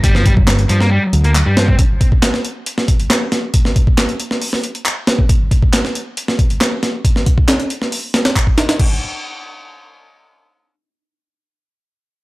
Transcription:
<<
  \new Staff \with { instrumentName = "Distorted electric guitar" } { \clef bass \time 4/4 \key g \minor \tempo 4 = 137 g16 f16 g16 r8. f16 bes16 g16 r8 bes16 r16 g16 f16 c'16 | r1 | r1 | r1 |
r1 | r1 | r1 | }
  \new Staff \with { instrumentName = "Picked electric bass" } { \clef bass \time 4/4 \key g \minor g,,8. g,,8. g,8. r16 d,8. g,8. | r1 | r1 | r1 |
r1 | r1 | r1 | }
  \new DrumStaff \with { instrumentName = "Drums" } \drummode { \time 4/4 <hh bd>16 sn16 <hh bd>16 bd16 <hc hh sn>16 hh16 hh16 sn16 r8 hh16 hh16 <hc hh>8 <hh sn>16 bd16 | <hh bd>8 <hh bd>16 bd16 <hc hh sn>16 sn16 hh8 hh16 sn16 <hh bd>16 hh16 <hc hh sn>8 <hh sn>8 | <hh bd>16 sn16 <hh bd>16 bd16 <hc hh sn>16 hh16 hh16 sn16 hho16 sn16 hh16 hh16 <hc hh>8 <hh sn>16 bd16 | <hh bd>8 <hh bd>16 bd16 <hc hh sn>16 sn16 hh8 hh16 sn16 <hh bd>16 hh16 <hc hh sn>8 <hh sn>8 |
<hh bd>16 sn16 <hh bd>16 bd16 <hc hh sn>16 hh16 hh16 sn16 hho8 <hh sn>16 <hh sn>16 <hc hh bd>16 bd16 <hh sn>16 <hh sn>16 | <cymc bd>4 r4 r4 r4 | r4 r4 r4 r4 | }
>>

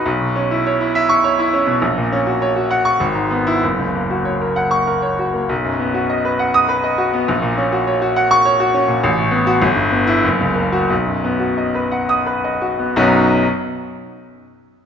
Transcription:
\new Staff \with { instrumentName = "Grand piano" } { \time 3/4 \key b \major \tempo 4 = 99 << { r4. r16 cis'''8 r8. | r4. r16 cis'''16 r8. e'16 | r4. r16 cis'''8 r8. | r4. r16 dis'''8 r8. |
r4. r16 cis'''8 r8. | r8. fis'16 r8. e'16 r8. fis'16 | r4. r16 dis'''8 r8. | <b,, fis, fis b dis' fis'>8 r2 r8 | } \\ { b,,16 b,16 cis'16 e'16 cis''16 e'16 e''8 cis''16 e'16 cis'16 b,16 | ais,,16 ais,16 cis'16 fis'16 cis''16 fis'16 fis''8 gis,,16 gis,16 b8 | fis,,16 cis,16 ais16 fis'16 cis''16 ais'16 fis''8 ais'16 cis''16 fis'16 ais16 | b,,16 fis,16 b16 fis'16 dis''16 b'16 fis''8 b'16 dis''16 fis'16 b16 |
ais,,16 ais,16 cis'16 fis'16 cis''16 fis'16 fis''8 cis''16 fis'16 cis'16 ais,16 | a,,16 a,16 b8 g,,16 g,16 b8 fis,,16 cis,16 ais8 | b,,16 fis,16 b16 fis'16 dis''16 b'16 fis''8 b'16 dis''16 fis'16 b16 | r2. | } >> }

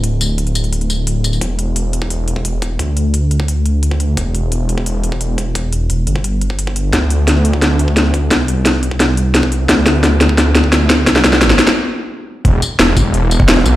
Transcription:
<<
  \new Staff \with { instrumentName = "Detuned saw bass" } { \clef bass \time 4/4 \key e \minor \tempo 4 = 174 d,,1 | e,,1 | d,1 | e,,1 |
e,,4 e,,8 g,,2~ g,,8 | d,1 | c,1 | d,1 |
c,4. r2 r8 | e,,8 r8 e,,2~ e,,8 b,,8 | }
  \new DrumStaff \with { instrumentName = "Drums" } \drummode { \time 4/4 hh8 <hh tamb>8 hh16 hh16 <hh tamb>16 hh16 hh16 hh16 <hh tamb>8 hh8 <hh tamb>16 tamb16 | <hh bd>8 hh8 hh8 hh16 bd16 hh8 hh16 bd16 hh8 <hh bd>8 | <hh bd>8 hh8 hh8 hh16 bd16 hh8 hh8 hh16 bd16 hh8 | <hh bd>8 hh8 hh8 hh16 bd16 hh8 hh16 bd16 hh8 <hh bd>8 |
<hh bd>8 hh8 hh8 hh16 bd16 hh8 hh16 bd16 hh16 bd16 hh8 | <hh bd sn>8 hh8 <hh sn>8 hh16 bd16 <hh sn>8 hh16 bd16 <hh sn>8 <hh bd>8 | <hh bd sn>8 hh8 <hh sn>8 hh16 bd16 <hh sn>8 hh8 <hh sn>16 bd16 hh8 | <hh bd sn>8 <hh sn>8 <hh sn>8 <hh sn>16 bd16 <hh sn>8 <hh sn>16 bd16 <hh sn>8 <hh bd sn>8 |
<hh bd sn>16 sn16 <hh sn>16 sn16 <hh sn>16 sn16 <hh sn>16 <hh bd sn>16 r4 r4 | <hh bd>8 <hh tamb>8 <hh sn>8 <hh bd tamb>8 hh8 <hh tamb>16 <bd ss>16 <hh sn>16 ss16 <hh tamb>8 | }
>>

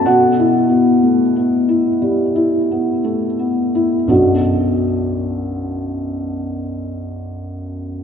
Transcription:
<<
  \new Staff \with { instrumentName = "Felt piano" } { \time 4/4 \key b \minor \tempo 4 = 60 <fis' fis''>2. r4 | <b,, fis, fis b d' fis'>1 | }
  \new Staff \with { instrumentName = "Felt piano" } { \time 4/4 \key b \minor \tuplet 3/2 { b,8 e'8 b8 a8 b8 e'8 g8 e'8 b8 a8 b8 e'8 } | r1 | }
>>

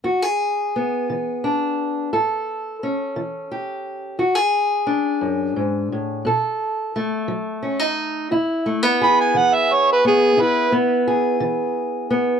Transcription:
<<
  \new Staff \with { instrumentName = "Harmonica" } { \time 12/8 \key e \mixolydian \tempo 4. = 58 r1. | r1. | r4 b''16 gis''16 fis''16 e''16 cis''16 b'16 gis'8 b'8 r2 r8 | }
  \new Staff \with { instrumentName = "Steel-string acoustic guitar" } { \time 12/8 \key e \mixolydian << { fis'16 gis'8. b4 d'4 a'4 cis'4 g'4 | fis'16 gis'8. d'2 a'4 a4 cis'16 dis'8. | e'8 a16 b16 gis'4. b8 e'8 b8 gis'4. b8 | } \\ { e,4 r8 e4 r8 a,4 r8 e4 r8 | e,4 r8 fis,8 gis,8 a,8 b,4 r8 fis4 r8 | e,4 r8 e4 r8 e,4 r8 e4 r8 | } >> }
>>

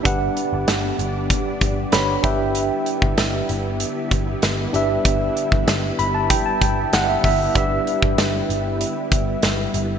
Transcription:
<<
  \new Staff \with { instrumentName = "Tine electric piano" } { \time 4/4 \key e \dorian \tempo 4 = 96 << { r2. b''8 g''8 | r1 | r4. b''16 a''16 g''16 a''16 g''8 fis''16 e''16 e''8 | r1 | } \\ { <d' g' b' fis''>2. <d' g' b' cis''>8 <d' g' b' e''>8~ | <d' g' b' e''>2.~ <d' g' b' e''>8 <d' g' b' e''>8~ | <d' g' b' e''>2.~ <d' g' b' e''>8 r8 | <d' g' b' e''>1 | } >> }
  \new Staff \with { instrumentName = "String machine" } { \time 4/4 \key e \dorian << { d'2.~ d'8 e'8~ | e'1~ | e'1~ | e'1 | } \\ { <d g b>1~ | <d g b>1~ | <d g b>1~ | <d g b>1 | } >> }
  \new Staff \with { instrumentName = "Picked electric bass" } { \clef bass \time 4/4 \key e \dorian g,,8 r16 g,,16 g,,8 g,,8. r16 g,,8 g,,8 g,,8~ | g,,8 r16 g,,16 g,,8 g,,8. r16 g,,8 g,,8 g,,8 | g,,8 r16 g,,16 g,,8 g,,8. r16 g,,8 g,,8 g,,8 | g,,8 r16 g,,16 g,,8 g,,8. r16 g,,8 g,,8 g,,8 | }
  \new DrumStaff \with { instrumentName = "Drums" } \drummode { \time 4/4 <hh bd>8 hh8 <hh sn>8 hh8 <hh bd>8 <hh bd>8 <hh sn>8 <hh bd>8 | hh8 hh16 bd16 <hh sn>8 hh8 hh8 <hh bd>8 <hh sn>8 hh8 | <hh bd>8 hh16 bd16 <hh sn>8 hh8 <hh bd>8 <hh bd>8 <hh sn>8 <hho bd>8 | <hh bd>8 hh16 bd16 <hh sn>8 hh8 hh8 <hh bd>8 <hh sn>8 hh8 | }
>>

